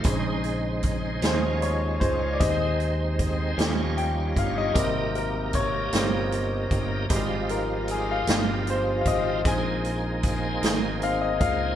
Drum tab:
HH |xxxxxx|xxxxxx|xxxxxx|xxxxxx|
SD |---o--|---o--|---o--|---o--|
BD |o-o--o|o-o--o|o-o--o|o----o|

HH |xxxxxx|
SD |---o--|
BD |o-o--o|